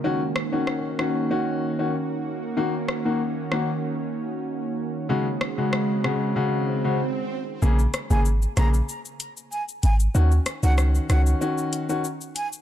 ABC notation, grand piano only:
X:1
M:4/4
L:1/16
Q:1/4=95
K:Ebdor
V:1 name="Grand piano"
[E,DG] z2 [E,DG]3 [E,DG]2 [E,DG]3 [E,DG] z4 | [E,B,G] z2 [E,B,G] z2 [E,B,G] z8 z | [D,A,G] z2 [D,A,G]3 [D,A,G]2 [D,A,G]3 [D,A,G] z4 | [D,B,A] z2 [D,B,A] z2 [D,B,A] z8 z |
[E,DG] z2 [E,DG]3 [E,DG]2 [E,DG]3 [E,DG] z4 |]